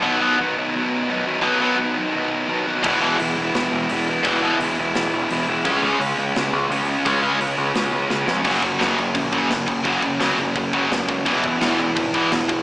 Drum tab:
CC |--------|--------|x-------|--------|
HH |--------|--------|--o-o-o-|o-o-o-o-|
SD |--------|--------|----o---|----o---|
BD |--------|--------|o-------|o-------|

CC |--------|--------|xxxxxxxx|xxxxxxxx|
HH |o-o-o-o-|o-o-o---|--------|--------|
SD |----o---|----o-oo|--o---o-|--o---o-|
BD |o-------|o-------|oo--oo-o|oo--oo-o|

CC |xxxxxxxx|
HH |--------|
SD |--o---o-|
BD |oo--oo-o|